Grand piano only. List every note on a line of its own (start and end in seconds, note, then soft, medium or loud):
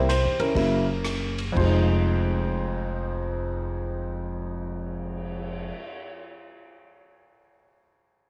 0.00 0.53 G4 medium
0.09 0.40 C5 medium
0.40 1.35 C#4 soft
0.40 0.55 E4 soft
0.40 1.35 A#4 medium
0.55 0.84 C#3 medium
0.55 0.84 F#3 soft
0.55 0.84 A#3 soft
0.55 0.84 E4 medium
1.52 5.69 F2 medium
1.52 5.72 F3 medium
1.57 5.77 G#3 medium
1.57 5.70 C5 medium
1.64 5.81 D#4 medium